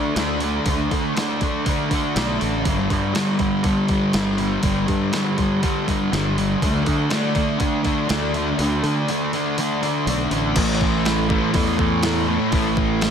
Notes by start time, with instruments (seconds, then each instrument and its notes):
Already playing: distorted electric guitar D3 A3 D4
0.16 fingered electric bass D2, distorted electric guitar D3 A3 D4, snare, open hi-hat
0.40 distorted electric guitar A3 D4, open hi-hat
0.66 fingered electric bass D2, distorted electric guitar D3 A3 D4, kick, open hi-hat
0.91 fingered electric bass D3, distorted electric guitar A3 D4, kick, open hi-hat
1.16 distorted electric guitar D3 A3 D4, snare, open hi-hat
1.41 distorted electric guitar A3 D4, kick, open hi-hat
1.66 distorted electric guitar D3 A3 D4, kick, open hi-hat
1.91 distorted electric guitar A3 D4, kick, open hi-hat
2.16 fingered electric bass B1, distorted electric guitar D3 A3 D4, snare, open hi-hat
2.40 fingered electric bass A1, distorted electric guitar A3 D4, open hi-hat
2.65 fingered electric bass G1, distorted electric guitar G2 D3 G3, kick, open hi-hat
2.90 fingered electric bass G2, distorted electric guitar D3 G3, kick, open hi-hat
3.14 distorted electric guitar G2 D3, snare, open hi-hat
3.18 distorted electric guitar G3
3.39 distorted electric guitar D3 G3, kick, open hi-hat
3.63 distorted electric guitar G2 D3 G3, kick, open hi-hat
3.88 distorted electric guitar D3 G3, kick, open hi-hat
4.13 fingered electric bass G1, distorted electric guitar G2 D3 G3, snare, open hi-hat
4.38 distorted electric guitar D3 G3, open hi-hat
4.62 fingered electric bass G1, distorted electric guitar G2 D3 G3, kick, open hi-hat
4.87 fingered electric bass G2, distorted electric guitar D3 G3, kick, open hi-hat
5.12 distorted electric guitar G2 D3 G3, snare, open hi-hat
5.38 distorted electric guitar D3 G3, kick, open hi-hat
5.62 distorted electric guitar G2 D3 G3, kick, open hi-hat
5.87 distorted electric guitar D3 G3, kick, open hi-hat
6.11 fingered electric bass G1, distorted electric guitar G2 D3 G3, snare, open hi-hat
6.37 distorted electric guitar D3 G3, open hi-hat
6.61 fingered electric bass D2, distorted electric guitar D3 A3 D4, kick, open hi-hat
6.85 fingered electric bass D3, distorted electric guitar A3 D4, kick, open hi-hat
7.10 distorted electric guitar D3 A3 D4, snare, open hi-hat
7.35 distorted electric guitar A3 D4, kick, open hi-hat
7.59 distorted electric guitar D3 A3 D4, kick, open hi-hat
7.83 distorted electric guitar A3 D4, kick, open hi-hat
8.08 fingered electric bass D2, distorted electric guitar D3 A3 D4, snare, open hi-hat
8.34 distorted electric guitar A3 D4, open hi-hat
8.59 fingered electric bass D2, distorted electric guitar D3 A3 D4, open hi-hat
8.83 fingered electric bass D3, distorted electric guitar A3 D4, open hi-hat
9.08 distorted electric guitar D3 A3 D4, open hi-hat
9.33 distorted electric guitar A3 D4, open hi-hat
9.58 distorted electric guitar D3 A3 D4, open hi-hat
9.82 distorted electric guitar A3 D4, open hi-hat
10.06 fingered electric bass B1, distorted electric guitar D3 A3 D4, open hi-hat
10.31 fingered electric bass A1, distorted electric guitar A3 D4, open hi-hat
10.56 fingered electric bass A1, distorted electric guitar A2 E3 A3, kick, open hi-hat, crash
10.81 kick
11.05 snare, open hi-hat
11.29 distorted electric guitar E3 A3, kick
11.52 fingered electric bass E2, distorted electric guitar A2 E3 A3, kick, open hi-hat
11.77 distorted electric guitar E3 A3, kick
12.03 distorted electric guitar A2 E3 A3, snare, open hi-hat
12.27 distorted electric guitar E3 A3
12.52 fingered electric bass A1, distorted electric guitar A2 E3 A3, kick, open hi-hat
12.77 kick
13.01 snare, open hi-hat